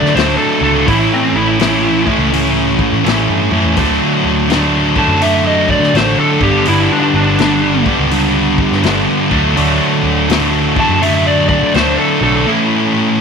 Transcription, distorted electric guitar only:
Already playing: D3 F#3 A3 D4
0.15 D3 F#3 A3 D4
0.62 D3 F#3 A3 D4
0.89 A2 E3 A3 C#4 E4
1.60 A2 E3 A3 C#4 E4
2.07 A2 E3 A3 C#4 E4
2.32 A2 E3 A3 C#4 E4
3.04 A2 E3 A3 C#4 E4
3.52 A2 E3 A3 C#4 E4
3.77 D3 F#3 A3 D4
4.50 D3 F#3 A3 D4
4.97 D3 F#3 A3 D4
5.22 D3 F#3 A3 D4
5.95 D3 F#3 A3 D4
6.41 G2 D3 G3 B3 D4
6.67 G2 D3 G3 B3 D4
7.39 G2 D3 G3 B3 D4
7.86 G2 D3 G3 B3 D4
8.12 G2 D3 G3 B3 D4
8.84 G2 D3 G3 B3 D4
9.30 D3 F#3 A3 D4
9.57 D3 F#3 A3 D4
10.30 D3 F#3 A3 D4
10.76 D3 F#3 A3 D4
11.02 D3 F#3 A3 D4
11.75 D3 F#3 A3 D4
12.21 D3 F#3 A3 D4
12.46 A2 E3 A3 C#4 E4

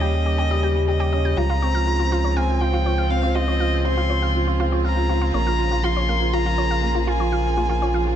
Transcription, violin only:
Already playing: D#5
0.88 D#5
1.37 A#5
2.37 G#5
2.61 G5
3.11 F5
3.35 D#5
3.86 C6
4.85 A#5
5.35 A#5
5.84 C6
6.34 A#5
7.08 G#5

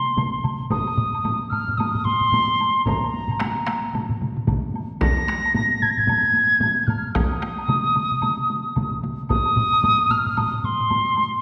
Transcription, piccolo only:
Already playing: C6
0.70 D#6
1.50 F6
1.77 D#6
2.04 C6
2.84 A#5
5.01 A#6
5.82 G#6
5.90 A#6
5.97 G#6
6.83 F6 G#6
7.11 D#6 F6
9.29 D#6
10.10 F6
10.37 D#6
10.58 D#6
10.64 C6

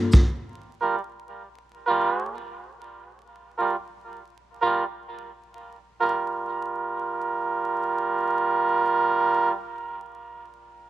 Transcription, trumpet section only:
0.81 G3 F4 A#4
1.86 G3 F4 A#4
3.58 G3 F4 A#4
4.61 G3 F4 A#4
6.00 G3 F4 A#4

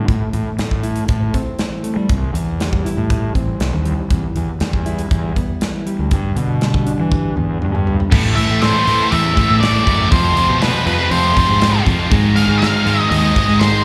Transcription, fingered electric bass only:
0.08 A2
0.34 A2
0.59 A2
1.09 A2
1.96 G3
2.09 C2
2.33 E2
2.97 A2
3.35 A1
3.60 C2
3.73 D#2
4.11 E2
4.36 E2
4.61 E2
5.11 E2
5.99 D2
6.12 G2
6.36 B2
7.00 E3
7.38 E2
7.62 G2
7.75 G2
8.12 A2
8.50 A2
8.87 A2
9.12 E2
9.50 A2
9.87 F#2
10.12 F2
10.50 B2
10.86 F2
11.11 F2
11.49 G#2
11.87 F2
12.11 G#2
12.48 G#2
12.86 G#2
13.11 D#2
13.48 G#2

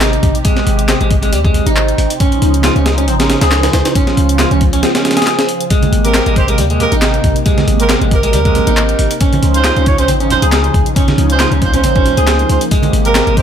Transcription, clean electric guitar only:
Already playing: D#4
0.45 G#3
0.89 C4
1.01 G#3
1.23 G#3
1.33 G3
1.45 G#3
1.67 D#4
2.20 C#4
2.64 F4
2.76 C#4
2.98 C#4
3.08 C4
3.20 C#4
3.42 G#4
3.96 C#4
4.39 F4
4.51 C#4
4.73 C#4
4.83 C4
4.95 C#4
5.17 G#4
5.71 G#3
6.15 C4
6.27 G#3
6.49 G#3
6.59 G3
6.71 G#3
6.92 D#4
7.46 G#3
7.90 C4
8.02 G#3
8.23 G#3
8.33 G3
8.45 G#3
8.67 D#4
9.21 C#4
9.65 F4
9.77 C#4
9.98 C#4
10.08 C4
10.21 C#4
10.42 G#4
10.96 C#4
11.40 F4
11.52 C#4
11.74 C#4
11.84 C4
11.96 C#4
12.18 G#4
12.72 G#3
13.15 C4
13.27 G#3

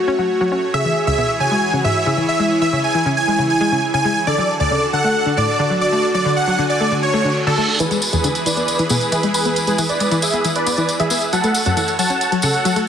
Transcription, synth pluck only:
0.08 C#4
0.19 F#3
0.41 F#3
0.52 C#4
0.74 C#3
0.85 E3
1.07 C#2
1.18 B2
1.40 C#3
1.51 G#3
1.73 C#3
1.84 G#2
2.06 C#3
2.17 E3
2.40 G#3
2.62 E3
2.73 C#3
2.95 E3
3.06 C#3
3.28 G#3
3.39 C#3
3.61 G#3
3.72 C#3
3.94 C#3
4.05 G#3
4.27 D3
4.38 F#3
4.60 D2
4.71 C#3
4.93 D3
5.04 A3
5.26 D3
5.37 A2
5.59 D3
5.70 F#3
5.92 A3
6.14 F#3
6.25 D3
6.48 F#3
6.59 D3
6.81 A3
6.92 D3
7.14 A3
7.25 D3
7.47 D3
7.58 A3
7.80 E3
7.91 G#3
8.13 E2
8.24 D3
8.46 E3
8.57 B3
8.79 E3
8.90 B2
9.12 E3
9.23 G#3
9.45 B3
9.67 G#3
9.78 E3
10.00 G#3
10.11 E3
10.34 B3
10.45 E3
10.67 B3
10.78 E3
11.00 E3
11.11 B3
11.33 F#3
11.44 A3
11.66 F#2
11.77 E3
11.99 F#3
12.10 C#4
12.32 F#3
12.43 C#3
12.65 F#3
12.76 A3

